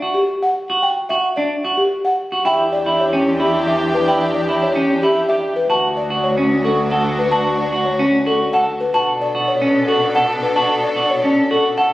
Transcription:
0.02 F#4
0.14 G4
0.43 F#5
0.70 F#4
0.83 G5
1.09 F#4 E5
1.36 D4 D5
1.65 F#4
1.77 G4
2.05 F#5
2.32 F#4
2.44 E2 D4 E4 G4 G5
2.72 D5
2.86 E4
3.00 C#5
3.13 C#4
3.40 E4 G4
3.67 G4 E5
3.94 B4
4.08 E4 G5
4.35 D5
4.49 E4
4.62 C#5
4.76 C#4
5.02 E4 G4
5.29 G4 E5
5.56 B4
5.69 D2 D4 F#4 A5
5.97 D5
6.10 F#4
6.24 C#5
6.38 C#4
6.64 F#4 A4
6.91 A4 F#5
7.18 B4
7.32 F#4 A5
7.58 D5
7.72 F#4
7.85 C#5
7.99 C#4
8.26 F#4 A4
8.53 A4 F#5
8.80 B4
8.94 B2 D4 F#4 A4 A5
9.21 D5
9.35 F#4
9.48 C#5
9.62 C#4
9.88 F#4 A4
10.15 A4 F#5
10.42 B4
10.56 F#4 A5
10.83 D5
10.96 F#4
11.10 C#5
11.24 C#4
11.51 F#4 A4
11.77 A4 F#5

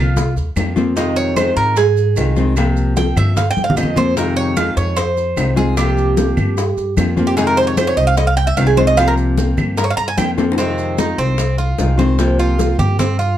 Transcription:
Already playing: C2 F3 A#3 C4 F4
0.16 muted nylon-string guitar stroke, high bongo, high conga, low conga, maracas
0.36 D#2, high bongo, high conga, maracas
0.56 F2 F3 A#3 C4 F4, high bongo, low bongo, high conga, claves, maracas
0.76 F3 A#3 C4 F4, high bongo, high conga, maracas
0.96 C3 D#3 G#3 C4 F4 D#5, high bongo, high conga, maracas
1.16 C#5, high conga, maracas
1.36 D#3 G#3 C4 F4 C5, high bongo, high conga, claves, maracas
1.56 G#2 A#4, high bongo, high conga, maracas
1.76 G#4, muted nylon-string guitar stroke, high bongo, high conga, maracas
1.97 high bongo, high conga, maracas
2.16 C2 D#3 G#3 C4 F4, high bongo, low bongo, high conga, claves, maracas
2.36 D#3 G#3 C4 F4, high bongo, high conga, maracas
2.56 C3 F3 A#3 C4 F4, high bongo, high conga, claves, maracas
2.77 high conga, maracas
2.96 F3 A#3 C4 F4 G5, high bongo, high conga, maracas
3.16 G2 E5, high bongo, low conga, claves, maracas
3.36 F5, muted nylon-string guitar stroke, high bongo, high conga, low conga, maracas
3.51 G5
3.57 G2, high bongo, high conga, maracas
3.64 F5
3.70 low conga
3.76 F2 F3 A#3 C4 F4 D#5, high bongo, low bongo, claves, maracas
3.83 low conga
3.96 F3 A#3 C4 F4 C5, high bongo, low conga, maracas
4.16 C3 D#3 G#3 C4 F4 A#4, high bongo, maracas
4.37 C#5, high conga, maracas
4.56 D#3 G#3 C4 F4 F5, high bongo, high conga, claves, maracas
4.77 F2 C#5, high bongo, high conga, maracas
4.97 C5, muted nylon-string guitar stroke, high bongo, high conga, maracas
5.17 high bongo, high conga, maracas
5.36 C2 D#3 G#3 C4 F4, high bongo, low bongo, high conga, claves, maracas
5.56 D#3 G#3 C4 F4 G#4, high bongo, high conga, maracas
5.77 C3 F3 A#3 C4 F4 G4, high bongo, high conga, claves, maracas
5.97 high conga, maracas
6.17 F3 A#3 C4 F4, high bongo, high conga, maracas
6.37 G2, high bongo, low conga, claves, maracas
6.58 muted nylon-string guitar stroke, high bongo, high conga, maracas
6.77 G2, high bongo, high conga, maracas
6.97 F2 F3 A#3 C4 F4, high bongo, low bongo, high conga, claves, maracas
7.17 F3 A#3 C4 F4, high bongo, high conga, maracas
7.27 G4
7.36 C3 D#3 G#3 C4 F4 G#4, high bongo, high conga, maracas
7.47 A#4
7.57 C5, high conga, maracas
7.67 C#5
7.77 D#3 G#3 C4 F4 C5, high bongo, high conga, claves, maracas
7.87 C#5
7.97 C2 D#5, high bongo, high conga, maracas
8.07 F5
8.17 D#5, muted nylon-string guitar stroke, high bongo, high conga, maracas
8.27 F5
8.37 G5, high bongo, high conga, maracas
8.47 E5
8.57 C2 D#3 G#3 C4 F4 F5, high bongo, low bongo, high conga, claves, maracas
8.67 G#4
8.77 D#3 G#3 C4 F4 C5, high conga, maracas
8.87 D#5
8.97 C3 F3 A#3 C4 F4 F5, high bongo, high conga, claves, maracas
9.08 A#4
9.17 high conga, maracas
9.38 F3 A#3 C4 F4, high bongo, high conga, maracas
9.57 G2, high bongo, low conga, claves, maracas
9.77 A#4, muted nylon-string guitar stroke, high bongo, high conga, maracas
9.84 C#5
9.90 F5
9.97 G2 A#5, high bongo, high conga, maracas
10.08 G#5
10.17 F2 F3 A#3 C4 F4 G5, high bongo, low bongo, high conga, claves, maracas
10.38 F3 A#3 C4 F4, high bongo, high conga, maracas
10.52 low bongo
10.58 C3 D#3 G#3 C4 F4, high bongo, high conga, maracas
10.78 high conga, maracas
10.98 D#3 G#3 C4 D#4 F4, high bongo, high conga, maracas
11.18 C2 C4, high bongo, high conga, maracas
11.38 muted nylon-string guitar stroke, high bongo, high conga, maracas
11.58 F4, high bongo, high conga, maracas
11.78 C2 D#3 G#3 C4 F4, high bongo, low bongo, high conga, maracas
11.98 D#3 G#3 C4 F4 C5, high bongo, high conga, maracas
12.18 C3 F3 A#3 C4 F4, high bongo, high conga, maracas
12.39 F4, high conga, maracas
12.58 F3 A#3 C4 F4, high bongo, high conga, maracas
12.79 G2 G4, high bongo, low conga, maracas
12.98 C4, muted nylon-string guitar stroke, high bongo, high conga, low conga, maracas
13.19 F4, high bongo, high conga, maracas

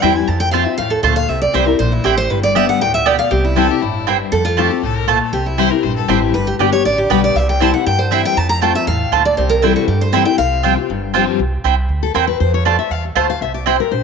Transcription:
Already playing: G2
0.02 E2 E3 G3 C4 E4 C5 G5
0.15 C4 E4 G#5
0.28 F2 A5
0.40 G5
0.51 F3 A3 C4 F4 C5 F5 A5
0.65 C4 F4 E5
0.78 E2 A2 F5
0.90 A4
1.03 D2 A#2 A3 F4 C5 A5
1.16 F5
1.28 C2 C3 E5
1.42 D5
1.53 C2 E3 G3 C4 E4 C5 G5
1.66 C4 E4 A#4
1.79 A#1 A#2 C5
1.92 E4
2.04 A1 A2 C4 E4 G4 C5 G5
2.17 C5
2.30 G1 G2 B4
2.43 D5
2.55 D3 G3 B3 G4 D5 E5 G5
2.69 F#5
2.81 D2 A2 G5
2.94 E5
3.06 B2 B3 G4 D5 G5
3.19 F5
3.31 C2 C3 G4
3.44 E4
3.56 E3 G3 C4 E4 A4 C5 G5
3.70 C4 E4 G4
3.82 G1 A2 E4
4.07 G2 C4 E4 C5 G5
4.32 F2 A4
4.45 F4
4.57 F3 A3 C4 F4 G4 C5 A5
4.69 C4 F4 A4
4.83 C2 A2 A4
4.96 A#4
5.07 A#2 A3 F4 A4 C5 A5
5.33 C2 C3 G4
5.46 E4
5.57 E3 G3 C4 E4 C5 G5
5.70 C4 E4 A#4
5.83 A#1 G2 C5
5.96 A4
6.08 A1 E3 G3 C4 E4 G4 C5 G5
6.34 G1 G2 B4
6.47 G4
6.59 G1 D3 G3 B3 G4 D5 G5
6.72 B3 G4 C#5
6.85 A1 D3 D5
6.98 G4
7.10 B1 D3 G3 B3 G4 B4 D5 G5
7.24 D5
7.35 C2 C3 E5
7.49 G5
7.60 E3 G3 C4 E4 C5 G5 A5
7.74 C4 E4 F#5
7.86 G2 G5
7.99 C5
8.11 E3 G3 C4 E4 C5 E5 G5
8.25 G5
8.37 F2 A5
8.49 A#5
8.62 F3 A3 C4 F4 C5 G5 A5
8.75 C4 F4 E5
8.87 E2 A2 F5
9.12 D2 A#2 A3 F4 C5 A5
9.25 D5
9.37 C2 C3 C5
9.49 A#4
9.62 E3 G3 C4 E4 A4 C5 G5
9.76 F#4
9.88 G2 G4
10.01 C5
10.13 E3 G3 C4 E4 C5 E5 G5
10.25 C4 E4 G5
10.38 C2 C3 F5
10.63 F3 G3 C4 F4 C5 G5
10.77 C4 F4
10.89 G1 G2
11.14 F3 G3 C4 F4 C5 G5
11.39 C2
11.64 C2 C4 E4 C5 G5
11.89 D2
12.03 A4
12.14 E2 C4 E4 A#4 C5 G5
12.27 B4
12.40 F2 C5
12.54 C#5
12.65 A3 F4 C5 D5 A5
12.79 E5
12.90 E2 F5
13.05 A4
13.15 D2 A3 F4 C5 A5
13.30 F5
13.41 C2 E5
13.54 D5
13.66 C4 E4 C5 G5
13.80 A#4
13.91 A#1 C5

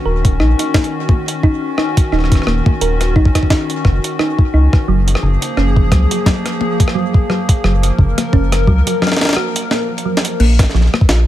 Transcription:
Already playing: D#3 C#4 F#4
0.05 D#1 A#4
0.25 kick, closed hi-hat
0.40 A#1 D#4, cross-stick
0.59 D#4, closed hi-hat
0.74 D#4, kick, cross-stick, snare, high tom
0.84 closed hi-hat
1.09 kick, high tom
1.28 closed hi-hat
1.43 D#4, kick
1.78 D#4, cross-stick
1.97 kick, closed hi-hat
2.12 D#1 D#4, cross-stick
2.19 cross-stick
2.24 cross-stick
2.32 kick, cross-stick, closed hi-hat
2.35 cross-stick
2.42 cross-stick
2.47 D#1 A#3, cross-stick
2.66 kick, high tom
2.81 D#1 A#4, closed hi-hat
3.01 cross-stick, closed hi-hat
3.16 A#1 D#4, kick
3.25 kick
3.35 D#4, kick, cross-stick, closed hi-hat
3.43 kick
3.50 D#4, kick, snare
3.70 closed hi-hat
3.85 F#1, kick, cross-stick
4.04 closed hi-hat
4.19 D#4, cross-stick
4.39 kick
4.54 C#2 D#4
4.73 kick, cross-stick
4.88 F#1 F3 F#3 A#3 G#4
5.08 closed hi-hat
5.15 cross-stick
5.23 F#1 C#3
5.42 closed hi-hat
5.57 F#1 C#4, cross-stick
5.77 kick
5.92 C#2 F#3, kick, cross-stick, closed hi-hat
6.11 F#3, closed hi-hat
6.26 F#3, kick, snare, high tom
6.46 cross-stick, closed hi-hat
6.61 high tom
6.80 kick, closed hi-hat
6.88 cross-stick
6.95 F#3
7.14 kick
7.30 F#3, cross-stick
7.49 kick, closed hi-hat
7.64 F#1 F#3 A#4, cross-stick
7.83 closed hi-hat
7.99 F#1 C#3, kick
8.18 cross-stick, closed hi-hat, high tom
8.33 F#1 C#4, kick
8.52 cross-stick, closed hi-hat
8.67 C#2 F#3, kick
8.87 F#3, closed hi-hat
9.02 F#3, cross-stick, snare
9.07 snare
9.12 snare
9.17 snare
9.21 snare, closed hi-hat
9.25 snare
9.29 snare
9.33 F#4, cross-stick, snare
9.56 closed hi-hat
9.71 A#3, snare
9.98 closed hi-hat
10.05 F#3
10.17 snare
10.25 closed hi-hat
10.40 A#1 A#3, crash
10.59 kick, cross-stick, snare, closed hi-hat
10.63 snare
10.70 snare
10.74 A#1 F3, snare
10.81 snare
10.86 snare
10.94 cross-stick, high tom
11.01 kick
11.09 A#1 F4, snare

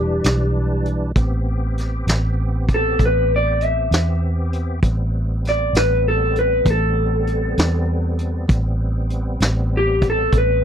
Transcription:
Already playing: E1 E3 G3 D4 G4
0.24 B1, snare, closed hi-hat
0.85 closed hi-hat
1.16 A1 B3 C4 G4, kick, closed hi-hat
1.77 snare, closed hi-hat
2.07 A1, snare, closed hi-hat
2.69 kick, closed hi-hat
2.74 A4
2.99 A1, kick, closed hi-hat
3.05 B4
3.36 D5
3.61 E5, closed hi-hat
3.91 E2, snare, closed hi-hat
4.53 closed hi-hat
4.83 A1 G3 B3 C4, kick, closed hi-hat
5.45 D5, snare, closed hi-hat
5.73 A1 B4, snare, closed hi-hat
6.08 A4
6.36 B4, closed hi-hat
6.65 A1, kick, closed hi-hat
6.70 A4
7.27 closed hi-hat
7.58 E2, snare, closed hi-hat
8.19 closed hi-hat
8.47 A1 G3 B3 C4, kick, closed hi-hat
9.10 closed hi-hat
9.40 A1, snare, closed hi-hat
9.77 G4
10.02 kick, closed hi-hat
10.10 A4
10.32 A1, kick, closed hi-hat
10.38 B4

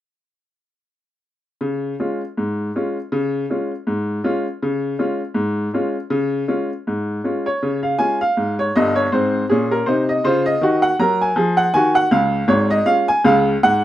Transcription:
1.61 C#3
2.00 G#3 C#4 F4
2.37 G#2
2.75 G#3 C#4 F4
3.12 C#3
3.50 G#3 C#4 F4
3.87 G#2
4.24 G#3 C#4 F4
4.63 C#3
4.99 G#3 C#4 F4
5.34 G#2
5.73 G#3 C#4 F4
6.10 C#3
6.48 G#3 C#4 F4
6.87 G#2
7.24 G#3 C#4 F4
7.46 C#5
7.63 C#3
7.83 F5
7.99 G#3 C#4 F4 G#5
8.21 F5
8.37 G#2
8.59 C#5
8.75 G1 G2 D#5
8.95 C#5
9.12 G#2 C4 C5
9.49 A#2 C#4 G#4
9.71 A#4
9.86 C3 D#4 C5
10.09 D#5
10.24 C#3 F4 C5
10.46 D#5
10.61 D#3 F#4
10.82 F#5
10.99 F#3 A#4 A#5
11.21 G#5
11.36 F3 G#4
11.57 F#5
11.74 D#3 F#4 G#5
11.95 F#5
12.11 C#2 C#3 F5
12.48 G#1 G#2 C#5
12.70 D#5
12.86 G#3 C#4 F4 F5
13.08 G#5
13.24 C#2 C#3 F5
13.63 G#2 F#5

